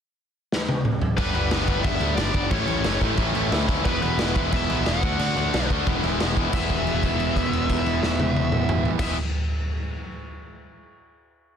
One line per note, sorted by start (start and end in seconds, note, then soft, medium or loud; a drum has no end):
0.52 snare medium
0.69 high tom medium
0.85 mid tom medium
1.01 floor tom loud
1.17 1.31 G1 loud
1.17 1.35 G2 medium
1.17 1.34 D3 medium
1.17 1.34 G3 medium
1.17 1.33 B3 medium
1.17 1.33 D4 medium
1.17 1.34 B4 medium
1.17 kick loud
1.17 crash medium
1.34 1.48 G1 loud
1.34 1.49 G2 medium
1.34 1.50 D3 medium
1.34 1.50 G3 medium
1.34 1.50 B3 medium
1.34 1.51 D4 medium
1.34 1.87 B4 medium
1.34 crash medium
1.50 1.64 G1 medium
1.50 1.68 G2 medium
1.50 1.68 D3 medium
1.50 1.67 G3 medium
1.50 1.67 B3 loud
1.50 1.66 D4 medium
1.50 snare loud
1.50 crash medium
1.67 1.81 G1 medium
1.67 1.83 G2 medium
1.67 1.83 D3 medium
1.67 1.84 G3 medium
1.67 1.84 B3 loud
1.67 1.84 D4 medium
1.67 kick medium
1.67 crash medium
1.83 1.98 G1 medium
1.83 2.01 G2 loud
1.83 2.01 D3 loud
1.83 2.00 G3 loud
1.83 2.00 B3 loud
1.83 2.00 D4 loud
1.83 2.15 E5 loud
1.83 kick loud
1.83 crash medium
2.00 2.14 D2 medium
2.00 2.16 G2 medium
2.00 2.16 D3 medium
2.00 2.17 G3 medium
2.00 2.17 B3 medium
2.00 2.18 D4 medium
2.00 crash medium
2.16 2.31 G1 medium
2.16 2.35 G2 medium
2.16 2.35 D3 medium
2.16 2.34 G3 medium
2.16 2.34 B3 loud
2.16 2.33 D4 medium
2.16 2.50 D5 medium
2.16 snare loud
2.16 crash medium
2.34 2.48 G1 loud
2.34 2.50 G2 medium
2.34 2.51 D3 medium
2.34 2.51 G3 medium
2.34 2.51 B3 medium
2.34 2.51 D4 medium
2.34 kick medium
2.34 crash medium
2.51 2.65 A1 loud
2.51 2.68 A2 medium
2.51 2.68 E3 loud
2.51 2.67 A3 loud
2.51 2.67 C#4 loud
2.51 2.68 E4 loud
2.51 2.98 C#5 medium
2.51 kick loud
2.51 crash medium
2.67 2.81 A1 medium
2.67 2.83 A2 medium
2.67 2.85 E3 medium
2.67 2.84 A3 medium
2.67 2.85 C#4 medium
2.67 2.85 E4 medium
2.67 crash medium
2.84 2.98 F#1 medium
2.84 3.02 A2 medium
2.84 3.01 E3 medium
2.84 3.01 A3 loud
2.84 3.00 C#4 medium
2.84 3.00 E4 medium
2.84 snare loud
2.84 crash medium
3.01 3.15 A1 medium
3.01 3.17 A2 medium
3.01 3.18 E3 medium
3.01 3.18 A3 medium
3.01 3.18 C#4 medium
3.01 3.19 E4 loud
3.01 kick medium
3.01 crash medium
3.17 3.31 A1 medium
3.17 3.36 A2 medium
3.17 3.35 E3 loud
3.17 3.35 A3 loud
3.17 3.34 C#4 loud
3.17 3.34 E4 loud
3.17 kick loud
3.17 crash medium
3.35 3.48 A1 medium
3.35 3.50 A2 medium
3.35 3.50 E3 medium
3.35 3.51 A3 medium
3.35 3.51 C#4 medium
3.35 3.52 E4 loud
3.35 crash medium
3.51 3.78 D2 medium
3.51 3.68 A2 medium
3.51 3.68 E3 medium
3.51 3.68 A3 medium
3.51 3.67 C#4 medium
3.51 3.66 E4 loud
3.51 snare loud
3.51 crash medium
3.68 3.85 A2 medium
3.68 3.84 E3 medium
3.68 3.85 A3 medium
3.68 3.84 C#4 medium
3.68 3.84 E4 loud
3.68 kick medium
3.68 crash medium
3.85 3.99 E1 loud
3.85 4.02 E2 loud
3.85 4.01 B2 loud
3.85 4.02 E3 medium
3.85 4.01 G#3 medium
3.85 4.01 B3 loud
3.85 4.00 E4 loud
3.85 4.01 B4 medium
3.85 kick loud
3.85 crash medium
4.02 4.16 E1 loud
4.02 4.18 E2 medium
4.02 4.18 B2 medium
4.02 4.18 E3 medium
4.02 4.18 G#3 medium
4.02 4.19 B3 loud
4.02 4.19 E4 medium
4.02 4.54 B4 loud
4.02 crash medium
4.19 4.33 E1 medium
4.19 4.35 E2 loud
4.19 4.35 B2 loud
4.19 4.36 E3 loud
4.19 4.36 G#3 loud
4.19 4.35 B3 loud
4.19 4.34 E4 loud
4.19 snare loud
4.19 crash medium
4.35 4.49 E1 medium
4.35 4.52 E2 medium
4.35 4.52 B2 medium
4.35 4.51 E3 medium
4.35 4.52 G#3 medium
4.35 4.52 B3 medium
4.35 4.52 E4 loud
4.35 kick medium
4.35 crash medium
4.52 4.66 E1 medium
4.52 4.69 E2 loud
4.52 4.69 B2 loud
4.52 4.70 E3 loud
4.52 4.69 G#3 loud
4.52 4.69 B3 loud
4.52 4.69 E4 loud
4.52 4.88 E5 medium
4.52 kick loud
4.52 crash loud
4.69 4.83 B1 loud
4.69 4.85 E2 medium
4.69 4.86 B2 loud
4.69 4.85 E3 medium
4.69 4.85 G#3 medium
4.69 4.86 B3 loud
4.69 4.86 E4 loud
4.69 crash medium
4.86 5.00 E1 loud
4.86 5.02 E2 loud
4.86 5.02 B2 loud
4.86 5.02 E3 medium
4.86 5.02 G#3 medium
4.86 5.02 B3 medium
4.86 5.03 E4 medium
4.86 5.19 F#5 loud
4.86 snare loud
4.86 crash medium
5.03 5.16 D2 medium
5.03 5.20 D3 loud
5.03 5.20 A3 loud
5.03 5.19 D4 loud
5.03 5.18 F#4 loud
5.03 kick loud
5.03 crash medium
5.19 5.33 D2 loud
5.19 5.35 D3 medium
5.19 5.36 A3 medium
5.19 5.36 D4 medium
5.19 5.37 F#4 loud
5.19 5.67 F#5 medium
5.19 crash loud
5.36 5.49 D2 medium
5.36 5.54 D3 medium
5.36 5.54 A3 medium
5.36 5.53 D4 medium
5.36 5.52 F#4 medium
5.36 crash medium
5.54 5.67 B1 medium
5.54 5.69 D3 medium
5.54 5.70 A3 loud
5.54 5.70 D4 loud
5.54 5.71 F#4 loud
5.54 snare loud
5.54 crash medium
5.70 5.83 D2 medium
5.70 5.86 D3 medium
5.70 5.86 A3 medium
5.70 5.87 D4 medium
5.70 5.87 F#4 medium
5.70 kick medium
5.70 crash medium
5.87 6.00 E1 medium
5.87 6.03 E2 loud
5.87 6.02 B2 loud
5.87 6.04 E3 loud
5.87 6.04 G#3 loud
5.87 6.03 B3 loud
5.87 6.02 E4 loud
5.87 kick loud
5.87 crash medium
6.03 6.16 E1 medium
6.03 6.19 E2 medium
6.03 6.19 B2 medium
6.03 6.19 E3 medium
6.03 6.20 G#3 medium
6.03 6.20 B3 medium
6.03 6.21 E4 medium
6.03 crash medium
6.20 6.46 E1 medium
6.20 6.37 E2 medium
6.20 6.37 B2 loud
6.20 6.37 E3 medium
6.20 6.37 G#3 medium
6.20 6.37 B3 medium
6.20 6.36 E4 loud
6.20 snare loud
6.20 crash medium
6.37 6.51 E2 medium
6.37 6.53 B2 medium
6.37 6.51 E3 medium
6.37 6.53 G#3 medium
6.37 6.53 B3 medium
6.37 6.53 E4 medium
6.37 kick medium
6.37 crash medium
6.52 8.91 E1 medium
6.52 8.98 E2 loud
6.52 9.01 B2 loud
6.52 8.99 E3 medium
6.52 9.00 G#3 medium
6.52 9.01 B3 loud
6.52 9.02 E4 loud
6.52 8.92 E5 medium
6.52 kick loud
6.52 crash loud
6.56 9.02 E3 loud
6.56 9.02 G#4 loud
6.70 kick medium
6.70 crash soft
6.87 crash soft
7.03 kick medium
7.03 crash soft
7.20 crash medium
7.36 kick medium
7.36 crash medium
7.53 crash medium
7.69 kick medium
7.69 crash medium
7.86 crash medium
8.03 snare medium
8.20 high tom loud
8.36 high tom medium
8.52 mid tom loud
8.69 mid tom loud
8.85 floor tom loud
8.99 9.13 E1 loud
8.99 9.14 E2 medium
8.99 9.15 B2 loud
8.99 9.14 E3 medium
8.99 9.15 G#3 medium
8.99 9.15 B3 loud
8.99 9.16 E4 loud
8.99 9.13 E5 medium
8.99 kick loud
8.99 snare loud
8.99 crash loud
9.03 9.16 G#4 loud